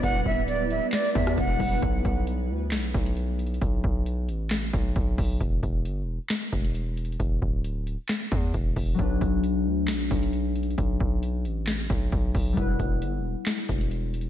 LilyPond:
<<
  \new Staff \with { instrumentName = "Flute" } { \time 4/4 \key b \minor \tempo 4 = 134 fis''8 e''8 d''8 e''8 d''8 e''8 fis''4 | r1 | r1 | r1 |
r1 | r1 | r1 | r1 | }
  \new Staff \with { instrumentName = "Harp" } { \time 4/4 \key b \minor <g e' b'>2.~ <g e' b'>8 <g b e' b'>8 | r1 | r1 | r1 |
r1 | <fis b d' b'>1~ | <fis b d' b'>1 | <g b e' b'>1 | }
  \new Staff \with { instrumentName = "Ambient pad" } { \time 4/4 \key b \minor <g b e' b'>1 | r1 | r1 | r1 |
r1 | r1 | r1 | r1 | }
  \new Staff \with { instrumentName = "808-style bass" } { \clef bass \time 4/4 \key b \minor e,,8 d,,4~ d,,16 r8. e,8 e,,8 e,,8 | b,,8 b,,4 d,8 b,,8 b,,4. | b,,8 b,,4 a,,4 b,,8 b,,8 b,,8 | e,,8 e,,8 g,,16. e,,16. r8. e,,4. |
e,,8 d,,4~ d,,16 r8. e,8 e,,8 e,,8 | b,,8 b,,4 d,8 b,,8 b,,4. | b,,8 b,,4 a,,4 b,,8 b,,8 b,,8 | e,,8 e,,8 g,,16. e,,16. r8. e,,4. | }
  \new DrumStaff \with { instrumentName = "Drums" } \drummode { \time 4/4 <hh bd>8 bd8 hh8 hh8 <hc hh sn>8 <hh bd>16 ss16 <hh bd>8 <hho bd>8 | <hh bd>8 <hh bd>8 hh4 <hc hh sn>8 <hh bd>16 hh16 \tuplet 3/2 { hh16 r16 r16 hh16 hh16 hh16 } | <hh bd>8 bd8 hh8 hh8 <hc hh sn>8 <hh bd>8 <hh bd>8 <hho bd>8 | <hh bd>8 <hh bd>8 hh4 <hc hh sn>8 <hh bd>16 hh16 \tuplet 3/2 { hh16 r16 r16 hh16 hh16 hh16 } |
<hh bd>8 bd8 hh8 hh8 <hc hh sn>8 <hh bd>8 <hh bd>8 <hho bd>8 | <hh bd>8 <hh bd>8 hh4 <hc hh sn>8 <hh bd>16 hh16 \tuplet 3/2 { hh16 r16 r16 hh16 hh16 hh16 } | <hh bd>8 bd8 hh8 hh8 <hc hh sn>8 <hh bd>8 <hh bd>8 <hho bd>8 | <hh bd>8 <hh bd>8 hh4 <hc hh sn>8 <hh bd>16 hh16 \tuplet 3/2 { hh16 r16 r16 hh16 hh16 r16 } | }
>>